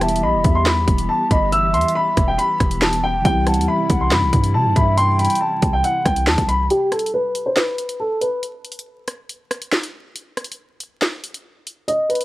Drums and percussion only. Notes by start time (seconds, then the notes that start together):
0.01 cross-stick, closed hi-hat
0.08 closed hi-hat
0.16 closed hi-hat
0.44 kick, closed hi-hat
0.66 finger snap, snare, closed hi-hat
0.88 kick, closed hi-hat
0.98 closed hi-hat
1.31 kick, closed hi-hat
1.52 closed hi-hat
1.74 closed hi-hat
1.81 closed hi-hat
1.88 closed hi-hat
2.17 kick, cross-stick, closed hi-hat
2.39 closed hi-hat
2.60 kick, cross-stick, closed hi-hat
2.71 closed hi-hat
2.82 finger snap, snare
2.93 closed hi-hat
3.25 kick, closed hi-hat
3.47 cross-stick, closed hi-hat
3.54 closed hi-hat
3.61 closed hi-hat
3.90 kick, closed hi-hat
4.11 finger snap, snare, closed hi-hat
4.33 kick, closed hi-hat
4.44 closed hi-hat
4.76 kick, closed hi-hat
4.98 closed hi-hat
5.19 closed hi-hat
5.25 closed hi-hat
5.30 closed hi-hat
5.35 closed hi-hat
5.62 kick, closed hi-hat
5.84 closed hi-hat
6.06 kick, cross-stick, closed hi-hat
6.16 closed hi-hat
6.27 finger snap, snare
6.38 kick, closed hi-hat
6.49 closed hi-hat
6.70 closed hi-hat
6.92 cross-stick, closed hi-hat
6.99 closed hi-hat
7.06 closed hi-hat
7.35 closed hi-hat
7.57 finger snap, snare, closed hi-hat
7.78 closed hi-hat
7.89 closed hi-hat
8.21 closed hi-hat
8.43 closed hi-hat
8.65 closed hi-hat
8.72 closed hi-hat
8.79 closed hi-hat
9.08 cross-stick, closed hi-hat
9.29 closed hi-hat
9.51 cross-stick, closed hi-hat
9.62 closed hi-hat
9.72 finger snap, snare
9.83 closed hi-hat
10.16 closed hi-hat
10.37 cross-stick, closed hi-hat
10.44 closed hi-hat
10.52 closed hi-hat
10.80 closed hi-hat
11.02 finger snap, snare, closed hi-hat
11.24 closed hi-hat
11.34 closed hi-hat
11.67 closed hi-hat
11.88 closed hi-hat
12.10 closed hi-hat
12.15 closed hi-hat
12.21 closed hi-hat